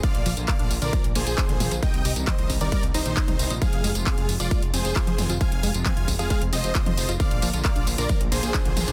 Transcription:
<<
  \new Staff \with { instrumentName = "Supersaw synth" } { \time 4/4 \key f \dorian \tempo 4 = 134 <d'' f''>8. r16 <d'' f''>8 r16 <bes' d''>8 r16 <aes' c''>4~ <aes' c''>16 r16 | <ees'' g''>8. r16 <c'' ees''>8 r16 <bes' d''>8 r16 <ees' c''>4~ <ees' c''>16 r16 | <aes' f''>8. r16 <aes' f''>8 r16 <f' d''>8 r16 <aes' c''>4~ <aes' c''>16 r16 | <f'' aes''>8. r16 <f'' aes''>8 r16 <aes' f''>8 r16 <c'' ees''>4~ <c'' ees''>16 r16 |
<d'' f''>8. r16 <d'' f''>8 r16 <bes' d''>8 r16 <aes' c''>4~ <aes' c''>16 r16 | }
  \new Staff \with { instrumentName = "Synth arpeggio sound" } { \clef bass \time 4/4 \key f \dorian d16 r16 f16 r16 bes16 d'16 r16 d16 f16 r16 bes16 r16 d'16 d16 r16 f16 | ees16 r16 g16 r16 c'16 ees'16 r16 ees16 g16 r16 ees'16 ees16 ees'16 ees'16 r16 ees''16 | f16 r16 aes16 r16 c'16 f'16 r16 f16 aes16 r16 c'16 r16 f'16 f16 r16 f'16 | f16 r16 aes16 r16 c'16 f'16 r16 f16 aes16 r16 c'16 r16 f'16 f16 r16 f'16 |
d16 r16 f16 r16 bes16 d'16 r16 d16 f16 r16 bes16 r16 d'16 d16 r16 d'16 | }
  \new Staff \with { instrumentName = "String section" } { \clef bass \time 4/4 \key f \dorian <d f bes f'>8 r16 <d f bes f'>8 <d f bes f'>8 <d f bes f'>8 r16 <d f bes f'>8 <d f bes f'>8 <d f bes f'>8 | <c ees g ees'>8 r16 <c ees g ees'>8 <c ees g ees'>8 <c ees g ees'>8 r16 <c ees g ees'>8 <c ees g ees'>8 <c ees g ees'>8 | <c f aes f'>8 r16 <c f aes f'>8 <c f aes f'>8 <c f aes f'>8 r16 <c f aes f'>8 <c f aes f'>8 <c f aes f'>8 | <c f aes f'>8 r16 <c f aes f'>8 <c f aes f'>8 <c f aes f'>8 r16 <c f aes f'>8 <c f aes f'>8 <c f aes f'>8 |
<d f bes f'>8 r16 <d f bes f'>8 <d f bes f'>8 <d f bes f'>8 r16 <d f bes f'>8 <d f bes f'>8 <d f bes f'>8 | }
  \new Staff \with { instrumentName = "Analog synth bass" } { \clef bass \time 4/4 \key f \dorian r16 bes,,16 bes,,16 bes,,16 r16 bes,,16 bes,,16 bes,,16 r16 bes,,16 bes,,16 bes,,16 r16 bes,,16 bes,,16 bes,,16 | r16 c,16 c,16 c,16 r16 c,16 c,16 c,16 r16 c,16 c,16 bes,,16 r16 c,16 c,16 bes,,16 | r16 f,,16 f,,16 f,,16 r16 f,,16 f,,16 f,,16 r16 f,,16 f,,16 f,,16 r16 f,,16 f,,16 f,,16 | r16 f,,16 f,,16 f,,16 r16 f,,16 f,,16 f,,16 r16 f,,16 f,,16 f,,16 r16 f,,16 f,,16 f,,16 |
r16 bes,,16 bes,,16 bes,,16 r16 bes,,16 bes,,16 bes,,16 r16 bes,,16 bes,,16 bes,,16 r16 bes,,16 bes,,16 bes,,16 | }
  \new DrumStaff \with { instrumentName = "Drums" } \drummode { \time 4/4 <hh bd tamb>16 hh16 <hho tamb>16 <hh tamb>16 <hc hh bd tamb>16 hh16 <hho tamb>16 <hh tamb>16 <hh bd tamb>16 hh16 <hho tamb>16 <hh tamb>16 <hc hh bd>16 hh16 <hho tamb toml>16 <hh tamb>16 | <hh bd>16 hh16 <hho tamb>16 <hh tamb>16 <hc hh bd toml>16 hh16 <hho bd tamb>16 <hh tamb>16 <hh bd tamb>16 hh16 <hho tamb>16 <hh tamb>16 <hc hh bd tamb>16 <hh toml>16 <hho tamb>16 <hh tamb>16 | <hh bd tamb>16 hh16 <hho tamb>16 <hh tamb>16 <hc hh bd>16 hh16 <hho tamb>16 <hh tamb>16 <hh bd tamb>16 hh16 <hho tamb>16 <hh tamb>16 <hc hh bd>16 hh16 <hho tamb toml>16 <hh tamb>16 | <hh bd>16 hh16 <hho tamb>16 <hh tamb>16 <hc hh bd tamb toml>16 hh16 <hho bd tamb>16 <hh tamb>16 <hh bd tamb>16 hh16 <hho tamb>16 <hh tamb>16 <hc hh bd>16 <hh toml>16 <hho tamb>16 <hh tamb>16 |
<hh bd tamb>16 hh16 <hho tamb>16 <hh tamb>16 <hc hh bd>16 hh16 <hho tamb>16 <hh tamb>16 <hh bd tamb>16 hh16 <hho tamb>16 <hh tamb>16 <hc hh bd>16 hh16 <hho tamb toml>16 <hh tamb>16 | }
>>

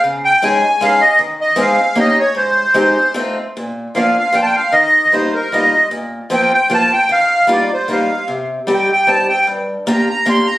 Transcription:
<<
  \new Staff \with { instrumentName = "Accordion" } { \time 3/4 \key aes \major \tempo 4 = 153 r8 g''8 aes''4 f''8 ees''8 | r8 ees''8 f''4 ees''8 des''8 | c''2 r4 | \key bes \major r4 f''8 f''8 g''32 a''32 g''16 f''8 |
ees''4 c''8 bes'8 ees''4 | r4 g''8 g''8 a''8 g''8 | f''4 d''8 c''8 f''4 | r4 g''8 g''8 a''8 g''8 |
r4 bes''8 bes''8 c'''8 bes''8 | }
  \new Staff \with { instrumentName = "Steel-string acoustic guitar" } { \time 3/4 \key aes \major des4 <aes des' ees' aes'>8 r8 <aes des' ees' aes'>8 r8 | ees4 <aes c' ees' aes'>8 r8 <bes des' ees' g'>8 r8 | aes,4 <aes c' ees' g'>8 r8 <a c' ees' f'>8 r8 | \key bes \major bes,4 <f bes d' f'>8 r8 <f bes d' f'>8 r8 |
ees4 <g bes ees' f'>8 r8 <g bes ees' f'>8 r8 | bes,4 <f bes c' f'>8 r8 <f bes c' f'>8 r8 | ees4 <g bes ees' f'>8 r8 <g bes ees' f'>8 r8 | c4 <g c' ees' g'>8 r8 <g c' ees' g'>8 r8 |
g,4 <bes d' f' g'>8 r8 <bes d' f' g'>8 r8 | }
>>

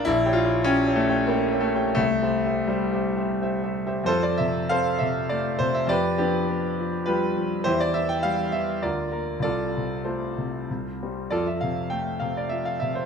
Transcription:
\new Staff \with { instrumentName = "Grand piano" } { \time 3/4 \key f \major \tempo 4 = 98 << { e'8 f'8 des'8 a8 bes8 a8 | a4 g4 r4 | <f' a' c''>16 d''16 e''8 <a' c'' f''>8 e''8 d''8 c''16 e''16 | <g' b' d''>8 <b d' g'>4. <f' g' b'>4 |
<e' g' c''>16 d''16 e''16 g''16 f''8 e''8 <f' bes' d''>8 bes'8 | <f' a' d''>4 <f' a' c''>4. r8 | <f' a' d''>16 e''16 f''8 g''8 f''16 d''16 e''16 f''16 e''16 c''16 | } \\ { \tuplet 3/2 { bes,,8 <g' des'' g''>8 <g' des'' g''>8 <g' des'' g''>8 <g' des'' g''>8 <g' des'' g''>8 <g' des'' g''>8 <g' des'' g''>8 <g' des'' g''>8 } | \tuplet 3/2 { c,8 <g' c'' e''>8 <g' c'' e''>8 <g' c'' e''>8 <g' c'' e''>8 <g' c'' e''>8 <g' c'' e''>8 <g' c'' e''>8 <g' c'' e''>8 } | f,8 c8 c'8 c8 a8 c8 | f,8 f8 b8 f8 g8 f8 |
e,8 e8 g8 e8 d,8 bes8 | c,8 c8 a8 c8 c,8 <g c'>8 | f,8 c8 a8 c8 f8 c8 | } >> }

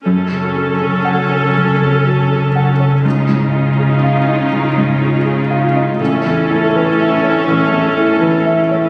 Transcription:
<<
  \new Staff \with { instrumentName = "Grand piano" } { \time 4/4 \key fis \dorian \tempo 4 = 81 \tuplet 3/2 { fis,8 cis8 fis'8 a'8 fis''8 cis''8 fis,8 cis8 fis'8 a'8 fis''8 cis''8 } | \tuplet 3/2 { cis,8 gis,8 eis'8 gis'8 eis''8 dis''8 cis,8 gis,8 eis'8 gis'8 eis''8 dis''8 } | \tuplet 3/2 { a,,8 e,8 e'8 b'8 e''8 cis''8 a,,8 e,8 e'8 b'8 e''8 cis''8 } | }
  \new Staff \with { instrumentName = "Viola section" } { \time 4/4 \key fis \dorian <cis' a'>1 | <dis' eis'>1 | <cis' a'>1 | }
  \new Staff \with { instrumentName = "Harp" } { \time 4/4 \key fis \dorian fis,8 fis'8 cis8 fis'8 cis8 fis'8 cis8 fis'8 | cis8 eis'8 cis'8 eis'8 cis'8 eis'8 cis'8 eis'8 | a,8 e'8 e8 e'8 e8 e'8 e8 e'8 | }
  \new Staff \with { instrumentName = "Cello section" } { \clef bass \time 4/4 \key fis \dorian fis,1 | cis1 | a,1 | }
>>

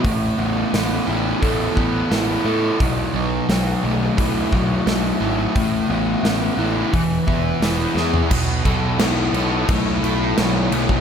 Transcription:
<<
  \new Staff \with { instrumentName = "Distorted electric guitar" } { \time 4/4 \key a \lydian \tempo 4 = 87 a8 b8 b8 e'8 a'8 b8 e'8 a'8 | b,8 fis8 fis8 a8 e'8 fis8 a8 e'8 | a8 b8 b8 e'8 e8 b8 e'8 gis'8 | b,8 a'8 e'8 a'8 a8 e'8 fis8 a8 | }
  \new Staff \with { instrumentName = "Picked electric bass" } { \clef bass \time 4/4 \key a \lydian a,,8 a,,8 a,,8 a,,8 a,,8 a,,8 a,,8 a,8 | b,,8 b,,8 b,,8 b,,8 b,,8 b,,8 b,,8 gis,,8 | a,,8 a,,8 a,,8 a,,8 e,,8 e,,8 e,,8 e,8 | b,,8 b,,8 b,,8 b,,8 b,,8 b,,8 b,,8 b,,8 | }
  \new DrumStaff \with { instrumentName = "Drums" } \drummode { \time 4/4 <hho bd>4 <hho sn>4 <hho bd>8 bd8 <hho sn>4 | <hho bd>4 <hho sn>4 <hho bd>8 bd8 <hho sn>4 | <hho bd>4 <hho sn>4 <hho bd>8 bd8 <hho sn>8 sn16 tomfh16 | <cymc bd>8 <cymc bd>8 <cymc sn>8 cymc8 <cymc bd>8 cymc8 <cymc sn>8 cymc16 bd16 | }
>>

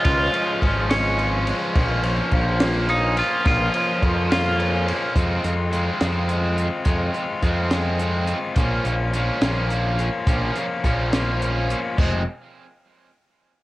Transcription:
<<
  \new Staff \with { instrumentName = "Glockenspiel" } { \time 6/8 \key f \minor \tempo 4. = 70 f'''4. des'''4 r8 | r2 ees'''8 f'''8 | f'''4. f'''4 r8 | r2. |
r2. | r2. | r2. | r2. | }
  \new Staff \with { instrumentName = "Clean electric guitar" } { \time 6/8 \key f \minor f'4. des'4 r8 | r2 ees'8 f'8 | f'4. f'4 r8 | r2. |
r2. | r2. | r2. | r2. | }
  \new Staff \with { instrumentName = "Overdriven electric guitar" } { \time 6/8 \key f \minor <f aes des' f'>8 <aes des' f'>8 <f aes des' f'>8 <aes des' f'>8 <f aes des' f'>8 <aes des' f'>8 | <f bes des' f'>8 <bes des' f'>8 <f bes des' f'>8 <bes des' f'>8 <f bes des' f'>8 <bes des' f'>8 | <f bes des' f'>8 <bes des' f'>8 <f bes des' f'>8 <bes des' f'>8 <f bes des' f'>8 <bes des' f'>8 | <aes c' f'>8 <c' f'>8 <aes c' f'>8 <aes c' f'>4 <c' f'>8 |
<aes c' f'>8 <c' f'>8 <aes c' f'>8 <aes c' f'>4 <c' f'>8 | <f bes des' f'>8 <bes des' f'>8 <f bes des' f'>8 <f bes des' f'>4 <bes des' f'>8 | <f bes des' f'>8 <bes des' f'>8 <f bes des' f'>8 <f bes des' f'>4 <bes des' f'>8 | <f aes c'>8 r2 r8 | }
  \new Staff \with { instrumentName = "Distorted electric guitar" } { \clef bass \time 6/8 \key f \minor <f aes des'>8 f8 f8 aes8 des'8 aes8 | f8 f8 f8 bes8 des'8 bes8 | f8 f8 f8 bes8 des'8 bes8 | <f aes c'>8 r8 <f aes c'>8 <f aes c'>8 <f aes c'>8 r8 |
<f aes c'>8 r8 <f aes c'>8 <f aes c'>8 <f aes c'>8 r8 | <f bes des'>8 r8 <f bes des'>8 <f bes des'>8 <f bes des'>8 r8 | <f bes des'>8 r8 <f bes des'>8 <f bes des'>8 <f bes des'>8 r8 | <f aes c'>8 r2 r8 | }
  \new Staff \with { instrumentName = "Picked electric bass" } { \clef bass \time 6/8 \key f \minor des,8 r8 aes,,2 | bes,,4 bes,,2 | bes,,8 r8 f,2 | f,8 f,4 f,4. |
f,8 r8 f,2 | bes,,8 bes,,4 bes,,4. | bes,,8 r8 bes,,2 | f,,8 r2 r8 | }
  \new DrumStaff \with { instrumentName = "Drums" } \drummode { \time 6/8 <bd cymr>8 cymr8 <bd cymr>8 <cymr sn>8 cymr8 cymr8 | <bd cymr>8 cymr8 <bd cymr>8 <cymr sn>8 cymr8 cymr8 | <bd cymr>8 cymr8 <bd cymr>8 <cymr sn>8 cymr8 cymr8 | <hh bd>8 hh8 hh8 <hh sn>8 hh8 hh8 |
<hh bd>8 hh8 <hh bd>8 <hh sn>8 hh8 hh8 | <hh bd>8 hh8 hh8 <hh sn>8 hh8 hh8 | <hh bd>8 hh8 <hh bd>8 <hh sn>8 hh8 hh8 | <cymc bd>4. r4. | }
>>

